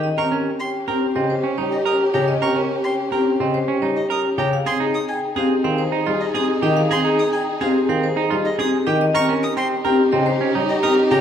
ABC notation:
X:1
M:4/4
L:1/16
Q:1/4=107
K:Ebmix
V:1 name="Violin"
z d' z2 c' z g z4 z e e' z b | z d' z2 c' z g z4 z e e' z b | z c' z e' a z f z4 z e e' z g | z c' z e' a z f z4 z e e' z g |
z d' z e' c' z g z4 z e e' z b |]
V:2 name="Vibraphone"
e z B z g z G z e c z d z G z d | e z B z g z G z e c z d z G z d | f z A z g z G z f c z e z G z e | f z A z g z G z f c z e z G z e |
e z B z g z G z e c z d z G z d |]
V:3 name="Clarinet"
G16- | G12- G3 z | A16- | A12- A3 z |
G16 |]
V:4 name="Clean electric guitar"
z B D z3 B z C z D E z B z G | z B D z3 B z C z D E z B z G | z A E z3 A z C z E F z A z G | z A E z3 A z C z E F z A z G |
z B D z C z B z C z D E z B z G |]
V:5 name="Violin section"
[DG]16- | [DG]12- [DG]3 z | [EA]16- | [EA]12- [EA]3 z |
[EG]16 |]
V:6 name="Grand piano" clef=bass
z C z4 C z D, z2 G, z3 D, | z C z4 C z D, z2 G, z3 D, | z C z4 C z E, z2 G, z C z E, | z C z4 C z E, z2 G, z C z E, |
z C z4 C z D, z2 G, z C z D, |]